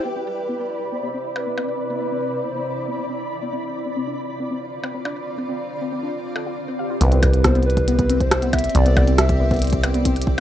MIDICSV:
0, 0, Header, 1, 8, 480
1, 0, Start_track
1, 0, Tempo, 434783
1, 59, Time_signature, 4, 2, 24, 8
1, 11483, End_track
2, 0, Start_track
2, 0, Title_t, "Synth texture"
2, 0, Program_c, 0, 99
2, 60, Note_on_c, 0, 83, 82
2, 61, Note_on_c, 0, 74, 80
2, 7749, Note_off_c, 0, 74, 0
2, 7749, Note_off_c, 0, 83, 0
2, 11483, End_track
3, 0, Start_track
3, 0, Title_t, "Soft synth lead"
3, 0, Program_c, 1, 80
3, 61, Note_on_c, 1, 71, 100
3, 1019, Note_on_c, 1, 72, 114
3, 1035, Note_off_c, 1, 71, 0
3, 1500, Note_on_c, 1, 71, 99
3, 1517, Note_off_c, 1, 72, 0
3, 1973, Note_off_c, 1, 71, 0
3, 1980, Note_on_c, 1, 71, 101
3, 2699, Note_on_c, 1, 72, 94
3, 2715, Note_off_c, 1, 71, 0
3, 3659, Note_off_c, 1, 72, 0
3, 7499, Note_on_c, 1, 67, 79
3, 7738, Note_on_c, 1, 71, 95
3, 7754, Note_off_c, 1, 67, 0
3, 8219, Note_on_c, 1, 72, 101
3, 8236, Note_off_c, 1, 71, 0
3, 8451, Note_off_c, 1, 72, 0
3, 8458, Note_on_c, 1, 71, 94
3, 8682, Note_off_c, 1, 71, 0
3, 8699, Note_on_c, 1, 71, 104
3, 9060, Note_on_c, 1, 72, 106
3, 9076, Note_off_c, 1, 71, 0
3, 9412, Note_off_c, 1, 72, 0
3, 9419, Note_on_c, 1, 76, 114
3, 9660, Note_on_c, 1, 74, 109
3, 9677, Note_off_c, 1, 76, 0
3, 10136, Note_off_c, 1, 74, 0
3, 10142, Note_on_c, 1, 76, 99
3, 10816, Note_off_c, 1, 76, 0
3, 11483, End_track
4, 0, Start_track
4, 0, Title_t, "Ambient pad"
4, 0, Program_c, 2, 92
4, 60, Note_on_c, 2, 48, 76
4, 60, Note_on_c, 2, 60, 70
4, 60, Note_on_c, 2, 64, 71
4, 60, Note_on_c, 2, 74, 81
4, 3861, Note_off_c, 2, 48, 0
4, 3861, Note_off_c, 2, 60, 0
4, 3861, Note_off_c, 2, 64, 0
4, 3861, Note_off_c, 2, 74, 0
4, 3898, Note_on_c, 2, 50, 76
4, 3898, Note_on_c, 2, 74, 85
4, 3899, Note_on_c, 2, 60, 73
4, 3899, Note_on_c, 2, 65, 72
4, 7700, Note_off_c, 2, 50, 0
4, 7700, Note_off_c, 2, 60, 0
4, 7700, Note_off_c, 2, 65, 0
4, 7700, Note_off_c, 2, 74, 0
4, 7736, Note_on_c, 2, 60, 86
4, 7736, Note_on_c, 2, 67, 78
4, 7736, Note_on_c, 2, 74, 76
4, 7736, Note_on_c, 2, 76, 96
4, 11483, Note_off_c, 2, 60, 0
4, 11483, Note_off_c, 2, 67, 0
4, 11483, Note_off_c, 2, 74, 0
4, 11483, Note_off_c, 2, 76, 0
4, 11483, End_track
5, 0, Start_track
5, 0, Title_t, "Synth pluck"
5, 0, Program_c, 3, 84
5, 59, Note_on_c, 3, 59, 79
5, 136, Note_off_c, 3, 59, 0
5, 179, Note_on_c, 3, 60, 71
5, 293, Note_off_c, 3, 60, 0
5, 539, Note_on_c, 3, 59, 80
5, 616, Note_off_c, 3, 59, 0
5, 660, Note_on_c, 3, 59, 74
5, 736, Note_off_c, 3, 59, 0
5, 1019, Note_on_c, 3, 59, 80
5, 1096, Note_off_c, 3, 59, 0
5, 1140, Note_on_c, 3, 59, 71
5, 1216, Note_off_c, 3, 59, 0
5, 1260, Note_on_c, 3, 60, 70
5, 1373, Note_off_c, 3, 60, 0
5, 1620, Note_on_c, 3, 59, 71
5, 1696, Note_off_c, 3, 59, 0
5, 1740, Note_on_c, 3, 59, 71
5, 1816, Note_off_c, 3, 59, 0
5, 2100, Note_on_c, 3, 59, 71
5, 2176, Note_off_c, 3, 59, 0
5, 2219, Note_on_c, 3, 59, 77
5, 2296, Note_off_c, 3, 59, 0
5, 2339, Note_on_c, 3, 60, 76
5, 2453, Note_off_c, 3, 60, 0
5, 2698, Note_on_c, 3, 59, 69
5, 2775, Note_off_c, 3, 59, 0
5, 2818, Note_on_c, 3, 59, 67
5, 2895, Note_off_c, 3, 59, 0
5, 3178, Note_on_c, 3, 59, 76
5, 3256, Note_off_c, 3, 59, 0
5, 3299, Note_on_c, 3, 59, 73
5, 3376, Note_off_c, 3, 59, 0
5, 3418, Note_on_c, 3, 60, 76
5, 3532, Note_off_c, 3, 60, 0
5, 3778, Note_on_c, 3, 59, 73
5, 3855, Note_off_c, 3, 59, 0
5, 3898, Note_on_c, 3, 60, 77
5, 3975, Note_off_c, 3, 60, 0
5, 4257, Note_on_c, 3, 60, 76
5, 4335, Note_off_c, 3, 60, 0
5, 4378, Note_on_c, 3, 60, 80
5, 4455, Note_off_c, 3, 60, 0
5, 4498, Note_on_c, 3, 62, 72
5, 4612, Note_off_c, 3, 62, 0
5, 4857, Note_on_c, 3, 60, 76
5, 4935, Note_off_c, 3, 60, 0
5, 4977, Note_on_c, 3, 60, 75
5, 5055, Note_off_c, 3, 60, 0
5, 5337, Note_on_c, 3, 60, 77
5, 5415, Note_off_c, 3, 60, 0
5, 5458, Note_on_c, 3, 60, 73
5, 5535, Note_off_c, 3, 60, 0
5, 5578, Note_on_c, 3, 62, 71
5, 5692, Note_off_c, 3, 62, 0
5, 5937, Note_on_c, 3, 60, 75
5, 6015, Note_off_c, 3, 60, 0
5, 6059, Note_on_c, 3, 60, 74
5, 6136, Note_off_c, 3, 60, 0
5, 6418, Note_on_c, 3, 60, 73
5, 6495, Note_off_c, 3, 60, 0
5, 6537, Note_on_c, 3, 60, 71
5, 6615, Note_off_c, 3, 60, 0
5, 6657, Note_on_c, 3, 62, 68
5, 6772, Note_off_c, 3, 62, 0
5, 7018, Note_on_c, 3, 69, 75
5, 7132, Note_off_c, 3, 69, 0
5, 7138, Note_on_c, 3, 65, 90
5, 7215, Note_off_c, 3, 65, 0
5, 7378, Note_on_c, 3, 60, 73
5, 7493, Note_off_c, 3, 60, 0
5, 7497, Note_on_c, 3, 77, 94
5, 7575, Note_off_c, 3, 77, 0
5, 7617, Note_on_c, 3, 65, 94
5, 7695, Note_off_c, 3, 65, 0
5, 7737, Note_on_c, 3, 59, 83
5, 7815, Note_off_c, 3, 59, 0
5, 7857, Note_on_c, 3, 60, 79
5, 7972, Note_off_c, 3, 60, 0
5, 8217, Note_on_c, 3, 59, 86
5, 8295, Note_off_c, 3, 59, 0
5, 8337, Note_on_c, 3, 59, 79
5, 8415, Note_off_c, 3, 59, 0
5, 8698, Note_on_c, 3, 59, 84
5, 8775, Note_off_c, 3, 59, 0
5, 8818, Note_on_c, 3, 59, 78
5, 8895, Note_off_c, 3, 59, 0
5, 8939, Note_on_c, 3, 60, 77
5, 9053, Note_off_c, 3, 60, 0
5, 9300, Note_on_c, 3, 59, 77
5, 9376, Note_off_c, 3, 59, 0
5, 9419, Note_on_c, 3, 59, 75
5, 9496, Note_off_c, 3, 59, 0
5, 9779, Note_on_c, 3, 59, 77
5, 9856, Note_off_c, 3, 59, 0
5, 9899, Note_on_c, 3, 59, 81
5, 9976, Note_off_c, 3, 59, 0
5, 10018, Note_on_c, 3, 60, 81
5, 10132, Note_off_c, 3, 60, 0
5, 10379, Note_on_c, 3, 59, 75
5, 10456, Note_off_c, 3, 59, 0
5, 10499, Note_on_c, 3, 59, 77
5, 10576, Note_off_c, 3, 59, 0
5, 10858, Note_on_c, 3, 59, 80
5, 10936, Note_off_c, 3, 59, 0
5, 10978, Note_on_c, 3, 59, 78
5, 11056, Note_off_c, 3, 59, 0
5, 11099, Note_on_c, 3, 60, 85
5, 11213, Note_off_c, 3, 60, 0
5, 11483, End_track
6, 0, Start_track
6, 0, Title_t, "Acid bass"
6, 0, Program_c, 4, 38
6, 7737, Note_on_c, 4, 36, 102
6, 9599, Note_off_c, 4, 36, 0
6, 9658, Note_on_c, 4, 36, 104
6, 11483, Note_off_c, 4, 36, 0
6, 11483, End_track
7, 0, Start_track
7, 0, Title_t, "Percussion blips"
7, 1500, Note_on_c, 9, 76, 49
7, 1610, Note_off_c, 9, 76, 0
7, 1740, Note_on_c, 9, 76, 48
7, 1850, Note_off_c, 9, 76, 0
7, 5338, Note_on_c, 9, 76, 45
7, 5449, Note_off_c, 9, 76, 0
7, 5578, Note_on_c, 9, 76, 48
7, 5689, Note_off_c, 9, 76, 0
7, 7018, Note_on_c, 9, 76, 53
7, 7129, Note_off_c, 9, 76, 0
7, 7978, Note_on_c, 9, 76, 64
7, 8089, Note_off_c, 9, 76, 0
7, 9179, Note_on_c, 9, 76, 56
7, 9289, Note_off_c, 9, 76, 0
7, 9418, Note_on_c, 9, 76, 54
7, 9529, Note_off_c, 9, 76, 0
7, 9899, Note_on_c, 9, 76, 62
7, 10010, Note_off_c, 9, 76, 0
7, 10858, Note_on_c, 9, 76, 64
7, 10968, Note_off_c, 9, 76, 0
7, 11483, End_track
8, 0, Start_track
8, 0, Title_t, "Drums"
8, 7738, Note_on_c, 9, 36, 101
8, 7738, Note_on_c, 9, 42, 94
8, 7849, Note_off_c, 9, 36, 0
8, 7849, Note_off_c, 9, 42, 0
8, 7858, Note_on_c, 9, 42, 41
8, 7969, Note_off_c, 9, 42, 0
8, 7978, Note_on_c, 9, 36, 115
8, 7978, Note_on_c, 9, 42, 68
8, 8089, Note_off_c, 9, 36, 0
8, 8089, Note_off_c, 9, 42, 0
8, 8098, Note_on_c, 9, 42, 39
8, 8209, Note_off_c, 9, 42, 0
8, 8218, Note_on_c, 9, 36, 98
8, 8218, Note_on_c, 9, 37, 118
8, 8218, Note_on_c, 9, 42, 96
8, 8328, Note_off_c, 9, 37, 0
8, 8328, Note_off_c, 9, 42, 0
8, 8329, Note_off_c, 9, 36, 0
8, 8339, Note_on_c, 9, 42, 18
8, 8419, Note_off_c, 9, 42, 0
8, 8419, Note_on_c, 9, 42, 24
8, 8499, Note_off_c, 9, 42, 0
8, 8499, Note_on_c, 9, 42, 30
8, 8578, Note_off_c, 9, 42, 0
8, 8578, Note_on_c, 9, 36, 105
8, 8578, Note_on_c, 9, 42, 40
8, 8688, Note_off_c, 9, 36, 0
8, 8689, Note_off_c, 9, 42, 0
8, 8698, Note_on_c, 9, 42, 91
8, 8808, Note_off_c, 9, 42, 0
8, 8818, Note_on_c, 9, 36, 122
8, 8818, Note_on_c, 9, 42, 43
8, 8928, Note_off_c, 9, 36, 0
8, 8928, Note_off_c, 9, 42, 0
8, 8938, Note_on_c, 9, 42, 69
8, 9048, Note_off_c, 9, 42, 0
8, 9058, Note_on_c, 9, 36, 105
8, 9058, Note_on_c, 9, 42, 42
8, 9169, Note_off_c, 9, 36, 0
8, 9169, Note_off_c, 9, 42, 0
8, 9179, Note_on_c, 9, 37, 119
8, 9179, Note_on_c, 9, 42, 93
8, 9289, Note_off_c, 9, 37, 0
8, 9289, Note_off_c, 9, 42, 0
8, 9299, Note_on_c, 9, 42, 40
8, 9409, Note_off_c, 9, 42, 0
8, 9418, Note_on_c, 9, 42, 66
8, 9419, Note_on_c, 9, 36, 99
8, 9479, Note_off_c, 9, 42, 0
8, 9479, Note_on_c, 9, 42, 53
8, 9529, Note_off_c, 9, 36, 0
8, 9539, Note_off_c, 9, 42, 0
8, 9539, Note_on_c, 9, 42, 44
8, 9599, Note_off_c, 9, 42, 0
8, 9599, Note_on_c, 9, 42, 36
8, 9659, Note_off_c, 9, 42, 0
8, 9659, Note_on_c, 9, 36, 124
8, 9659, Note_on_c, 9, 42, 97
8, 9769, Note_off_c, 9, 36, 0
8, 9770, Note_off_c, 9, 42, 0
8, 9780, Note_on_c, 9, 42, 42
8, 9890, Note_off_c, 9, 42, 0
8, 9899, Note_on_c, 9, 36, 114
8, 9899, Note_on_c, 9, 42, 68
8, 10009, Note_off_c, 9, 36, 0
8, 10010, Note_off_c, 9, 42, 0
8, 10019, Note_on_c, 9, 42, 42
8, 10130, Note_off_c, 9, 42, 0
8, 10139, Note_on_c, 9, 37, 127
8, 10139, Note_on_c, 9, 42, 91
8, 10249, Note_off_c, 9, 37, 0
8, 10249, Note_off_c, 9, 42, 0
8, 10259, Note_on_c, 9, 36, 108
8, 10259, Note_on_c, 9, 42, 43
8, 10369, Note_off_c, 9, 36, 0
8, 10369, Note_off_c, 9, 42, 0
8, 10498, Note_on_c, 9, 42, 18
8, 10499, Note_on_c, 9, 36, 121
8, 10529, Note_off_c, 9, 42, 0
8, 10529, Note_on_c, 9, 42, 22
8, 10559, Note_off_c, 9, 42, 0
8, 10559, Note_on_c, 9, 42, 22
8, 10588, Note_off_c, 9, 42, 0
8, 10588, Note_on_c, 9, 42, 27
8, 10609, Note_off_c, 9, 36, 0
8, 10619, Note_off_c, 9, 42, 0
8, 10619, Note_on_c, 9, 42, 96
8, 10648, Note_off_c, 9, 42, 0
8, 10648, Note_on_c, 9, 42, 31
8, 10679, Note_off_c, 9, 42, 0
8, 10679, Note_on_c, 9, 42, 34
8, 10709, Note_off_c, 9, 42, 0
8, 10709, Note_on_c, 9, 42, 38
8, 10738, Note_off_c, 9, 42, 0
8, 10738, Note_on_c, 9, 42, 43
8, 10739, Note_on_c, 9, 36, 114
8, 10848, Note_off_c, 9, 42, 0
8, 10849, Note_off_c, 9, 36, 0
8, 10858, Note_on_c, 9, 42, 71
8, 10968, Note_off_c, 9, 42, 0
8, 10978, Note_on_c, 9, 42, 42
8, 11088, Note_off_c, 9, 42, 0
8, 11098, Note_on_c, 9, 36, 102
8, 11099, Note_on_c, 9, 42, 99
8, 11209, Note_off_c, 9, 36, 0
8, 11209, Note_off_c, 9, 42, 0
8, 11219, Note_on_c, 9, 42, 41
8, 11278, Note_off_c, 9, 42, 0
8, 11278, Note_on_c, 9, 42, 68
8, 11339, Note_on_c, 9, 36, 119
8, 11389, Note_off_c, 9, 42, 0
8, 11449, Note_off_c, 9, 36, 0
8, 11483, End_track
0, 0, End_of_file